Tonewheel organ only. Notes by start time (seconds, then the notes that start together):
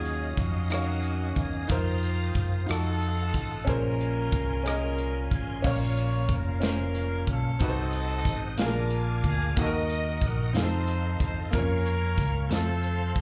Already playing: C#4 D#5 F5 D#6
1.68 C5 F5 A#5
2.68 A4 F5 F#5
3.68 C#4 A#4 G#5 C6
5.63 A#3 C#4 F5
7.62 C5 D#5 F#5 D#6
8.60 A#4 F5 G#5 D6
9.57 D#5 F#5 D#6
10.54 A4 F5 C6
11.52 A#4 C#5 C#6
12.49 A4 C5 C6